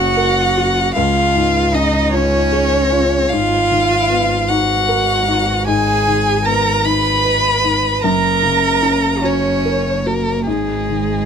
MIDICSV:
0, 0, Header, 1, 5, 480
1, 0, Start_track
1, 0, Tempo, 788436
1, 579, Time_signature, 6, 3, 24, 8
1, 5373, Tempo, 821918
1, 6791, End_track
2, 0, Start_track
2, 0, Title_t, "Violin"
2, 0, Program_c, 0, 40
2, 0, Note_on_c, 0, 78, 79
2, 562, Note_off_c, 0, 78, 0
2, 574, Note_on_c, 0, 77, 80
2, 1062, Note_on_c, 0, 75, 67
2, 1071, Note_off_c, 0, 77, 0
2, 1289, Note_off_c, 0, 75, 0
2, 1293, Note_on_c, 0, 73, 81
2, 2004, Note_on_c, 0, 77, 87
2, 2013, Note_off_c, 0, 73, 0
2, 2727, Note_on_c, 0, 78, 76
2, 2736, Note_off_c, 0, 77, 0
2, 3448, Note_off_c, 0, 78, 0
2, 3452, Note_on_c, 0, 80, 75
2, 3929, Note_on_c, 0, 82, 74
2, 3938, Note_off_c, 0, 80, 0
2, 4168, Note_on_c, 0, 83, 77
2, 4177, Note_off_c, 0, 82, 0
2, 4889, Note_off_c, 0, 83, 0
2, 4895, Note_on_c, 0, 82, 69
2, 5617, Note_on_c, 0, 73, 59
2, 5626, Note_off_c, 0, 82, 0
2, 6097, Note_on_c, 0, 70, 57
2, 6106, Note_off_c, 0, 73, 0
2, 6335, Note_off_c, 0, 70, 0
2, 6341, Note_on_c, 0, 68, 53
2, 6791, Note_off_c, 0, 68, 0
2, 6791, End_track
3, 0, Start_track
3, 0, Title_t, "Cello"
3, 0, Program_c, 1, 42
3, 0, Note_on_c, 1, 66, 100
3, 578, Note_off_c, 1, 66, 0
3, 581, Note_on_c, 1, 65, 90
3, 1061, Note_on_c, 1, 63, 84
3, 1070, Note_off_c, 1, 65, 0
3, 1307, Note_on_c, 1, 61, 94
3, 1316, Note_off_c, 1, 63, 0
3, 2021, Note_on_c, 1, 65, 95
3, 2030, Note_off_c, 1, 61, 0
3, 2741, Note_on_c, 1, 66, 81
3, 2750, Note_off_c, 1, 65, 0
3, 3465, Note_on_c, 1, 68, 99
3, 3474, Note_off_c, 1, 66, 0
3, 3928, Note_off_c, 1, 68, 0
3, 3932, Note_on_c, 1, 70, 82
3, 4166, Note_on_c, 1, 71, 93
3, 4175, Note_off_c, 1, 70, 0
3, 4886, Note_on_c, 1, 70, 103
3, 4895, Note_off_c, 1, 71, 0
3, 5601, Note_on_c, 1, 61, 75
3, 5610, Note_off_c, 1, 70, 0
3, 6086, Note_off_c, 1, 61, 0
3, 6095, Note_on_c, 1, 58, 55
3, 6347, Note_on_c, 1, 56, 63
3, 6355, Note_off_c, 1, 58, 0
3, 6791, Note_off_c, 1, 56, 0
3, 6791, End_track
4, 0, Start_track
4, 0, Title_t, "Felt piano"
4, 0, Program_c, 2, 0
4, 0, Control_c, 2, 64, 127
4, 0, Note_on_c, 2, 42, 69
4, 0, Note_on_c, 2, 49, 49
4, 0, Note_on_c, 2, 61, 52
4, 0, Note_on_c, 2, 66, 53
4, 104, Note_on_c, 2, 70, 57
4, 247, Note_off_c, 2, 66, 0
4, 350, Note_on_c, 2, 66, 54
4, 487, Note_off_c, 2, 70, 0
4, 559, Note_off_c, 2, 42, 0
4, 585, Note_off_c, 2, 66, 0
4, 586, Note_on_c, 2, 37, 62
4, 590, Control_c, 2, 64, 0
4, 592, Note_off_c, 2, 49, 0
4, 594, Note_off_c, 2, 61, 0
4, 703, Control_c, 2, 64, 127
4, 824, Note_on_c, 2, 44, 52
4, 1062, Note_on_c, 2, 61, 48
4, 1204, Note_off_c, 2, 44, 0
4, 1297, Note_on_c, 2, 65, 51
4, 1442, Note_off_c, 2, 61, 0
4, 1537, Note_on_c, 2, 68, 57
4, 1680, Note_off_c, 2, 65, 0
4, 1779, Note_on_c, 2, 65, 54
4, 1919, Note_off_c, 2, 68, 0
4, 1994, Note_off_c, 2, 37, 0
4, 2017, Note_off_c, 2, 65, 0
4, 2022, Note_on_c, 2, 44, 61
4, 2026, Control_c, 2, 64, 0
4, 2138, Control_c, 2, 64, 127
4, 2258, Note_on_c, 2, 51, 49
4, 2496, Note_on_c, 2, 59, 45
4, 2640, Note_off_c, 2, 51, 0
4, 2740, Note_on_c, 2, 63, 47
4, 2880, Note_off_c, 2, 59, 0
4, 2975, Note_on_c, 2, 70, 57
4, 3122, Note_off_c, 2, 63, 0
4, 3216, Note_on_c, 2, 63, 50
4, 3359, Note_off_c, 2, 70, 0
4, 3434, Note_off_c, 2, 44, 0
4, 3456, Note_on_c, 2, 44, 59
4, 3467, Control_c, 2, 64, 0
4, 3554, Control_c, 2, 64, 127
4, 3599, Note_off_c, 2, 63, 0
4, 3699, Note_on_c, 2, 51, 47
4, 3929, Note_on_c, 2, 59, 47
4, 4076, Note_off_c, 2, 51, 0
4, 4174, Note_on_c, 2, 63, 50
4, 4312, Note_off_c, 2, 59, 0
4, 4408, Note_on_c, 2, 71, 52
4, 4556, Note_off_c, 2, 63, 0
4, 4652, Note_on_c, 2, 63, 45
4, 4793, Note_off_c, 2, 71, 0
4, 4866, Note_off_c, 2, 44, 0
4, 4891, Note_off_c, 2, 63, 0
4, 4894, Note_on_c, 2, 42, 56
4, 4902, Control_c, 2, 64, 0
4, 4995, Control_c, 2, 64, 127
4, 5131, Note_on_c, 2, 49, 44
4, 5371, Note_on_c, 2, 61, 43
4, 5514, Note_off_c, 2, 49, 0
4, 5614, Note_on_c, 2, 66, 43
4, 5751, Note_off_c, 2, 61, 0
4, 5857, Note_on_c, 2, 70, 46
4, 5995, Note_off_c, 2, 66, 0
4, 6096, Note_on_c, 2, 66, 38
4, 6239, Note_off_c, 2, 70, 0
4, 6310, Note_off_c, 2, 42, 0
4, 6334, Note_on_c, 2, 44, 45
4, 6335, Note_off_c, 2, 66, 0
4, 6343, Control_c, 2, 64, 0
4, 6437, Control_c, 2, 64, 127
4, 6578, Note_on_c, 2, 51, 38
4, 6791, Note_off_c, 2, 44, 0
4, 6791, Note_off_c, 2, 51, 0
4, 6791, End_track
5, 0, Start_track
5, 0, Title_t, "Double bass"
5, 0, Program_c, 3, 43
5, 0, Note_on_c, 3, 30, 65
5, 584, Note_on_c, 3, 37, 64
5, 593, Note_off_c, 3, 30, 0
5, 2016, Note_on_c, 3, 32, 63
5, 2025, Note_off_c, 3, 37, 0
5, 4895, Note_on_c, 3, 30, 52
5, 4904, Note_off_c, 3, 32, 0
5, 6335, Note_on_c, 3, 32, 50
5, 6344, Note_off_c, 3, 30, 0
5, 6791, Note_off_c, 3, 32, 0
5, 6791, End_track
0, 0, End_of_file